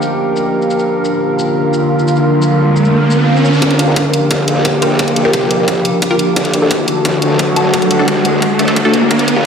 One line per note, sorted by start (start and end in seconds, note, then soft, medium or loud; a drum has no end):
0.00 0.85 F3 medium
0.00 3.58 A#3 medium
0.00 9.46 D4 medium
0.00 0.85 G4 medium
0.00 1.39 G4 medium
0.00 6.36 A#4 medium
0.00 6.36 F5 medium
0.00 shaker medium
0.36 shaker medium
0.62 shaker soft
0.71 shaker medium
0.79 shaker soft
0.88 3.59 D3 medium
0.88 3.59 F4 medium
0.88 riser medium
1.05 shaker medium
1.21 4.14 F4 medium
1.39 shaker medium
1.74 shaker medium
1.99 shaker soft
2.08 shaker medium
2.16 shaker soft
2.42 shaker medium
2.76 shaker medium
2.85 shaker soft
3.11 shaker medium
3.36 shaker soft
3.45 shaker medium
3.54 shaker soft
3.62 4.12 G1 medium
3.62 6.34 F3 medium
3.62 6.34 A#3 medium
3.62 6.34 G4 loud
3.62 kick medium
3.62 closed hi-hat loud
3.62 riser medium
3.71 closed hi-hat soft
3.79 closed hi-hat medium
3.88 3.95 F4 medium
3.88 3.95 G4 medium
3.88 6.37 G4 loud
3.88 3.95 A#4 medium
3.96 kick loud
3.96 closed hi-hat medium
4.14 closed hi-hat medium
4.31 4.46 G1 medium
4.31 kick loud
4.31 closed hi-hat medium
4.48 5.32 A#1 loud
4.48 closed hi-hat medium
4.65 kick loud
4.65 closed hi-hat loud
4.82 4.87 F4 medium
4.82 4.87 G4 medium
4.82 4.87 A#4 medium
4.82 closed hi-hat medium
4.99 kick loud
4.99 closed hi-hat medium
5.08 closed hi-hat soft
5.16 closed hi-hat medium
5.25 5.32 F4 medium
5.25 5.32 G4 medium
5.25 5.32 A#4 loud
5.33 5.66 G1 loud
5.33 kick loud
5.33 closed hi-hat medium
5.51 closed hi-hat medium
5.68 5.84 G1 medium
5.68 kick medium
5.68 closed hi-hat medium
5.85 closed hi-hat medium
6.02 kick loud
6.02 closed hi-hat medium
6.11 6.15 F4 medium
6.11 6.15 G4 medium
6.11 6.15 A#4 loud
6.19 closed hi-hat medium
6.36 6.86 D2 loud
6.36 9.08 D3 medium
6.36 9.08 A3 medium
6.36 9.08 F#4 medium
6.36 kick loud
6.36 closed hi-hat medium
6.42 9.11 F#4 medium
6.42 closed hi-hat soft
6.54 closed hi-hat medium
6.62 6.70 D4 medium
6.62 6.70 F#4 medium
6.62 6.70 A4 medium
6.71 kick medium
6.71 closed hi-hat medium
6.80 9.11 A4 medium
6.88 closed hi-hat medium
6.97 9.11 F#5 medium
7.05 7.21 D2 medium
7.05 kick medium
7.05 closed hi-hat medium
7.22 8.06 F#1 loud
7.22 closed hi-hat medium
7.39 kick loud
7.39 closed hi-hat medium
7.56 7.61 D4 medium
7.56 7.61 F#4 medium
7.56 7.61 A4 medium
7.56 closed hi-hat medium
7.74 kick medium
7.74 closed hi-hat medium
7.82 closed hi-hat soft
7.91 closed hi-hat medium
7.99 8.07 D4 medium
7.99 8.07 F#4 medium
7.99 8.07 A4 loud
8.08 8.41 D2 loud
8.08 kick loud
8.08 closed hi-hat medium
8.25 closed hi-hat medium
8.42 kick loud
8.42 closed hi-hat medium
8.59 9.09 F#1 medium
8.59 8.67 D4 medium
8.59 8.67 F#4 medium
8.59 8.67 A4 medium
8.59 closed hi-hat medium
8.68 8.73 D4 medium
8.68 8.73 F#4 medium
8.68 8.73 A4 loud
8.68 closed hi-hat soft
8.76 kick loud
8.76 closed hi-hat medium
8.85 8.93 D4 medium
8.85 8.93 F#4 medium
8.85 8.93 A4 loud
8.94 closed hi-hat medium
9.11 9.46 G1 medium
9.11 9.46 F3 medium
9.11 9.46 A#3 medium
9.11 9.46 G4 medium
9.11 kick loud
9.11 closed hi-hat medium
9.19 9.46 G4 medium
9.19 closed hi-hat soft
9.28 closed hi-hat medium
9.36 9.44 F4 medium
9.36 9.44 G4 medium
9.36 9.44 A#4 medium
9.36 9.46 A#4 medium